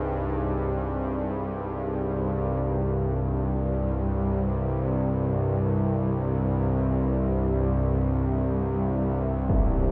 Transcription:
0.00 2.63 C2 medium
0.00 2.62 G2 medium
0.00 2.64 D#4 medium
0.00 2.64 G#4 medium
0.00 9.92 C5 medium
2.63 9.92 C2 medium
2.63 9.92 G2 medium
2.63 9.92 C4 medium
3.36 9.92 G4 medium
6.78 9.92 E5 medium
9.49 impact medium

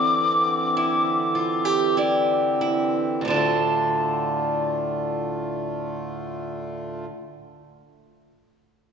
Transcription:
0.00 3.23 D3 medium
0.00 3.23 E3 medium
0.00 3.23 C4 medium
0.00 3.27 C4 medium
0.00 0.76 E4 medium
0.00 1.98 D5 medium
0.00 1.97 D6 medium
0.77 1.96 E4 medium
1.35 1.65 F4 soft
1.65 1.96 G4 soft
1.97 2.60 E4 soft
1.97 3.34 G4 soft
1.97 3.36 D5 medium
2.61 3.30 E4 soft
3.21 7.05 D2 medium
3.21 7.09 A2 medium
3.25 7.06 D3 medium
3.25 7.12 D3 medium
3.25 7.05 A3 medium
3.25 7.06 F4 medium
3.30 7.14 D4 medium
3.30 7.18 F4 medium
3.36 7.20 A4 medium

